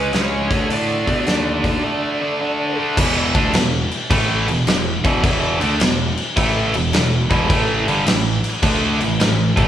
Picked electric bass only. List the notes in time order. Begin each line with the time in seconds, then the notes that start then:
Already playing: C#2
0.13 C#2
0.51 D2
0.70 A2
1.07 B2
1.26 D#2
2.97 E1
3.35 D2
3.54 E1
4.10 A1
4.49 E1
4.68 E1
5.05 E1
5.24 E1
5.62 D2
5.82 E1
6.37 A1
6.75 E1
6.94 E1
7.31 E1
7.50 A1
7.87 G1
8.06 A1
8.63 D2
9.01 A1
9.20 A1
9.57 A1